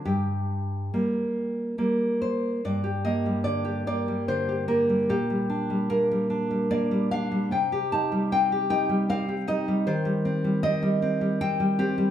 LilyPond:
\new Staff \with { instrumentName = "Nylon-string guitar" } { \time 3/4 \key g \minor \tempo 4 = 75 << { g'2 r8 c''8 | d''8 ees''8 d''8 d''8 c''8 bes'8 | g'4 bes'4 d''8 f''8 | g''8 a''8 g''8 g''8 f''8 ees''8 |
c''4 ees''4 g''8 g'8 | } \\ { g,4 <g bes>4 <g bes>4 | g,16 g'16 bes16 g16 d16 g'16 bes16 g16 d16 g'16 bes16 g16 | bes,16 g16 d'16 g16 bes16 g16 d'16 g16 bes16 g16 d'16 g16 | c16 g'16 ees'16 g16 c'16 g'16 ees'16 g16 c'16 g'16 ees'16 g16 |
ees16 g16 c'16 g16 c'16 g16 c'16 g16 c'16 g16 c'16 g16 | } >> }